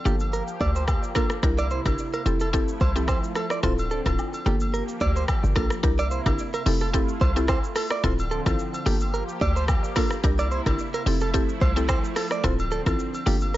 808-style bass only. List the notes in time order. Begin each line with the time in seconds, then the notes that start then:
0.05 G1
0.61 D2
1.43 C2
1.86 G1
2.26 F1
2.81 C2
3.63 D1
4.06 D1
4.46 G1
5.01 D2
5.44 G1
5.56 A#1
5.84 C2
6.26 G1
6.66 F1
7.21 C2
8.04 D1
8.46 A1
8.86 G1
9.41 D2
10.24 C2
10.66 G1
11.06 F1
11.61 C2
12.44 D1
12.86 A1
13.26 G1